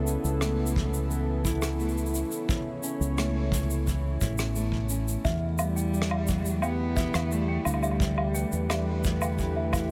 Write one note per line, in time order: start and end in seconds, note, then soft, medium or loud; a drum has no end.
0.00 0.15 C#2 medium
0.00 2.47 C#3 medium
0.00 0.41 A3 medium
0.00 6.59 B3 medium
0.00 6.27 E4 medium
0.00 6.15 A4 medium
0.07 0.75 C#4 medium
0.07 shaker medium
0.24 2.22 C#2 medium
0.24 shaker medium
0.41 1.78 A3 medium
0.41 cross-stick medium
0.41 shaker soft
0.67 shaker medium
0.76 2.13 C#4 medium
0.76 kick medium
0.94 shaker medium
1.10 3.86 E3 medium
1.10 shaker soft
1.45 4.21 E4 medium
1.45 kick loud
1.45 shaker medium
1.62 cross-stick medium
1.62 shaker medium
1.79 3.16 A3 medium
1.79 shaker soft
1.89 shaker soft
1.98 shaker soft
2.06 shaker soft
2.14 2.82 C#4 medium
2.14 shaker medium
2.21 5.25 C#5 medium
2.32 shaker medium
2.48 5.24 C#3 medium
2.48 kick loud
2.48 shaker soft
2.83 3.51 C#4 medium
2.83 shaker medium
3.00 4.21 C#2 medium
3.00 shaker medium
3.17 4.55 A3 medium
3.17 cross-stick medium
3.17 shaker soft
3.52 4.89 C#4 medium
3.52 kick medium
3.52 shaker medium
3.70 shaker medium
3.86 6.63 E3 medium
3.86 kick medium
3.86 shaker soft
4.21 5.16 A1 medium
4.21 6.97 E4 medium
4.21 kick medium
4.21 shaker medium
4.38 cross-stick medium
4.38 shaker medium
4.56 5.32 A3 medium
4.56 shaker soft
4.72 kick medium
4.89 5.32 C#4 medium
4.89 shaker medium
5.08 shaker medium
5.24 7.99 E2 medium
5.24 7.05 E2 medium
5.24 9.91 A3 medium
5.24 5.34 E5 medium
5.24 kick loud
5.24 shaker medium
5.57 9.91 D3 medium
5.57 6.59 G3 loud
5.57 6.28 B3 medium
5.57 low woodblock medium
5.57 shaker medium
5.76 5.93 G5 medium
5.76 shaker medium
5.93 7.31 G3 medium
5.93 shaker soft
6.02 cross-stick medium
6.10 6.21 E5 medium
6.10 low woodblock medium
6.27 7.66 B3 medium
6.27 9.91 G4 medium
6.27 kick medium
6.27 shaker medium
6.45 shaker medium
6.62 9.37 E3 medium
6.62 7.34 B3 loud
6.62 6.79 G5 medium
6.62 low woodblock medium
6.62 shaker soft
6.96 9.72 E4 medium
6.96 7.06 E5 medium
6.96 kick loud
6.96 shaker medium
7.14 7.57 E2 medium
7.14 cross-stick medium
7.14 low woodblock medium
7.14 shaker medium
7.32 8.69 G3 medium
7.32 7.66 A3 loud
7.32 shaker soft
7.48 7.65 G5 medium
7.65 8.43 D2 loud
7.65 9.01 G3 medium
7.65 8.35 B3 medium
7.65 low woodblock medium
7.65 shaker medium
7.74 low woodblock medium
7.83 7.93 E5 medium
7.83 low woodblock soft
7.83 shaker medium
7.91 low woodblock soft
8.00 9.91 E2 medium
8.00 9.91 B4 medium
8.00 kick loud
8.00 shaker soft
8.18 low woodblock medium
8.34 9.04 B3 medium
8.34 8.51 G5 medium
8.34 shaker medium
8.52 9.91 E2 medium
8.52 shaker medium
8.70 9.91 G3 medium
8.70 8.80 E5 medium
8.70 cross-stick medium
8.70 low woodblock medium
8.70 shaker soft
9.04 9.91 B3 medium
9.04 kick loud
9.04 shaker medium
9.22 9.38 G5 medium
9.22 low woodblock medium
9.22 shaker medium
9.39 9.91 E3 medium
9.39 kick medium
9.39 shaker soft
9.56 9.66 E5 medium
9.73 9.91 E4 medium
9.73 kick loud
9.73 low woodblock medium
9.73 shaker medium